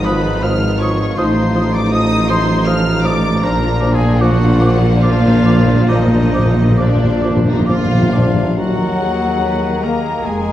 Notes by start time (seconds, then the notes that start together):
Already playing: G#1 G#2 D#3 F3 B3 D#4 F4
0.05 F3 B4 B5 D#6
0.42 F3 D#4 F5 D#6 F6
0.80 F3 C#5 C#6 D#6
1.17 A1 A2 F3 D#4 C5 C6 D#6
1.55 F3 D#6
1.74 D5 D6
1.92 F3 D#4 D#5 D#6
2.29 F3 C5 C6 D#6
2.66 F3 D#4 F5 D#6 F6
3.04 F3 D5 D6 D#6
3.41 A#1 A#2 F3 A#3 D4 F4 A#4 A#5 D6
3.51 A#2
3.57 A#2
3.65 A#2
3.73 A#2
3.79 A#2 F3 D6
3.86 A#2
3.94 A#2 G#4 G#5
4.00 A#2
4.08 A#2
4.20 A#2 F3 F#4 F#5 D6
4.29 A#2
4.36 A#2
4.44 A#2
4.51 A#2
4.58 A#2 F3 D6
4.66 A#2
4.73 A#2
4.80 A#2
4.88 A#2
4.95 A#2
5.01 A#2 F3 D4 F4 F5 D6
5.10 A#2
5.18 A#2
5.26 A#2
5.34 A#2
5.41 A#2 D6
5.46 A#2 F3
5.58 A#2
5.65 A#2
5.73 A#2
5.82 A#2
5.87 A#2 F3 D#4 D#5 D6
5.98 A#2
6.06 A#2
6.13 A#2
6.21 A#2
6.30 A#2 D6
6.35 A#2 F3
6.46 A#2
6.54 A#2
6.61 A#2
6.70 A#2
6.77 A#2 F3 D4 D5 D6
6.86 A#2
6.95 A#2
7.04 A#2
7.12 A#2
7.20 A#2 D6
7.25 A#2 F3
7.36 A#2
7.44 A#2 D#4
7.52 A#2
7.60 A#2
7.66 A#2 F3 F4 F5 D6
7.77 A#2
7.85 A#2
7.93 A#2
8.01 A#2
8.10 A#2 D4 D6
8.14 A#2 F3
8.27 A#2
8.34 A#2
8.43 A#2
8.56 D#2 D#3 F#3 F#4 A#4 F#5 A#5
8.99 G#4
9.40 A#4 B4
9.83 A#3 A#4 A#5
10.24 F1 F2 G#3 G#4 G#5